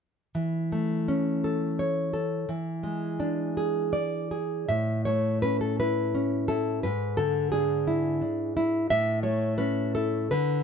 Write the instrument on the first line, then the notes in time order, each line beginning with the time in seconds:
nylon-string guitar
0.35 E3
0.72 A3
1.08 C#4
1.44 A4
1.79 C#5
2.13 A4
2.49 E3
2.83 G#3
3.20 D4
3.57 G#4
3.93 D5
4.31 G#4
4.69 A2 E5
5.05 A3 C#5
5.42 C#4 B4
5.61 A4
5.80 E4 B4
6.15 C#4
6.48 E4 A4
6.83 G#2 B4
7.17 D3 A4
7.52 D4 G#4
7.87 E4
8.21 D4
8.57 E4
8.90 A2 E5
9.23 A3 C#5
9.58 C#4 B4
9.95 E4 A4
10.31 D3 B4